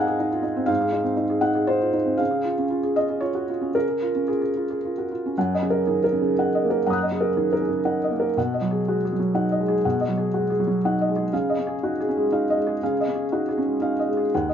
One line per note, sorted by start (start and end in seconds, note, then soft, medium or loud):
0.00 0.66 G#2 medium
0.00 0.56 C4 medium
0.00 0.19 D#4 medium
0.00 0.07 G#4 soft
0.00 0.66 F5 medium
0.00 0.69 F#5 medium
0.00 0.72 G#5 medium
0.00 0.72 A#5 medium
0.07 0.27 G#4 medium
0.19 0.40 D#4 soft
0.32 0.44 F4 soft
0.43 0.64 D#4 soft
0.56 0.76 C4 soft
0.66 2.15 G#2 medium
0.66 1.41 F5 medium
0.80 1.01 G#4 soft
0.92 1.13 D#4 soft
1.04 1.24 C4 soft
1.17 1.37 D#4 soft
1.30 1.50 G#4 soft
1.41 1.62 D#4 soft
1.41 1.67 F#5 medium
1.55 1.75 G#4 soft
1.67 1.89 D#4 soft
1.67 2.19 C5 medium
1.81 1.94 F4 soft
1.93 2.14 D#4 soft
2.06 2.19 C4 soft
2.18 3.70 C#3 soft
2.18 2.95 F5 medium
2.31 2.52 G#4 soft
2.44 2.65 F4 soft
2.58 2.78 C#4 soft
2.70 2.91 F4 soft
2.83 3.04 G#4 soft
2.96 3.17 F4 soft
2.96 3.22 D#5 medium
3.09 3.30 G#4 soft
3.21 3.42 F4 soft
3.21 3.74 C#5 medium
3.35 3.48 F#4 soft
3.49 3.70 F4 soft
3.61 3.83 C#4 soft
3.75 5.32 C#3 soft
3.75 4.28 A#4 medium
3.88 4.10 G#4 soft
4.02 4.23 F4 soft
4.15 4.37 C#4 soft
4.28 4.50 F4 soft
4.28 4.40 G#4 soft
4.41 4.63 G#4 soft
4.56 4.77 F4 soft
4.70 4.91 G#4 soft
4.85 5.05 F4 soft
4.98 5.10 F#4 soft
5.11 5.32 F4 soft
5.26 5.37 C#4 soft
5.38 6.84 F#2 medium
5.38 5.64 F#5 medium
5.54 5.81 D#5 soft
5.63 6.03 C#3 soft
5.70 5.97 A#4 soft
5.87 6.12 D#3 soft
5.87 6.04 G#4 soft
6.04 6.31 A#4 medium
6.13 6.20 C#3 soft
6.21 6.48 C#3 medium
6.39 6.78 D#4 soft
6.39 6.65 F#5 soft
6.55 6.81 D#5 medium
6.64 7.03 A#3 soft
6.70 6.97 A#4 soft
6.87 8.33 F#2 medium
6.87 7.13 F#5 medium
6.87 8.33 A#5 soft
6.87 8.34 D#6 soft
6.93 8.36 F#6 soft
7.03 7.30 D#5 soft
7.12 7.52 C#3 soft
7.21 7.47 A#4 soft
7.37 7.62 D#3 soft
7.37 7.54 G#4 soft
7.53 7.80 A#4 soft
7.62 7.67 C#3 soft
7.69 7.96 C#3 soft
7.85 8.26 D#4 soft
7.85 8.13 F#5 soft
8.04 8.30 D#5 soft
8.10 8.36 A#3 soft
8.20 8.37 A#4 soft
8.37 9.81 B2 medium
8.37 8.64 F#5 medium
8.54 8.80 D#5 soft
8.61 9.01 F#3 soft
8.71 8.97 G#4 soft
8.88 9.12 G#3 soft
8.88 9.04 F#4 soft
9.05 9.30 G#4 soft
9.13 9.18 F#3 soft
9.20 9.46 F#3 soft
9.35 9.74 D#4 soft
9.35 9.61 F#5 soft
9.52 9.78 D#5 medium
9.61 9.99 G#3 soft
9.68 9.94 G#4 soft
9.85 11.28 B2 medium
9.85 10.11 F#5 soft
10.01 10.27 D#5 soft
10.09 10.49 F#3 soft
10.17 10.44 G#4 soft
10.34 10.59 G#3 soft
10.34 10.51 F#4 soft
10.50 10.76 G#4 medium
10.60 10.66 F#3 soft
10.67 10.93 F#3 medium
10.85 11.23 D#4 soft
10.85 11.10 F#5 medium
11.01 11.26 D#5 medium
11.09 11.33 G#3 medium
11.16 11.32 G#4 medium
11.33 12.78 C#3 medium
11.33 11.59 F5 medium
11.50 11.75 D#5 medium
11.59 11.97 C#4 soft
11.67 11.92 G#4 medium
11.83 12.07 D#4 soft
11.83 11.99 F#4 soft
12.00 12.25 G#4 medium
12.09 12.47 C#4 soft
12.17 12.42 G#3 medium
12.32 12.72 D#4 medium
12.32 12.58 F5 medium
12.50 12.76 D#5 medium
12.58 12.97 G#3 soft
12.67 12.92 G#4 medium
12.83 14.29 C#3 medium
12.83 13.09 F5 medium
13.00 13.26 D#5 soft
13.08 13.47 C#4 soft
13.15 13.42 G#4 soft
13.32 13.57 D#4 soft
13.32 13.48 F#4 soft
13.49 13.75 G#4 medium
13.58 13.97 C#4 soft
13.66 13.92 G#3 soft
13.82 14.22 D#4 soft
13.82 14.08 F5 medium
13.99 14.26 D#5 medium
14.09 14.33 G#3 soft
14.17 14.33 G#4 soft
14.35 14.54 D#2 medium
14.35 14.54 F#5 medium
14.49 14.54 D#5 soft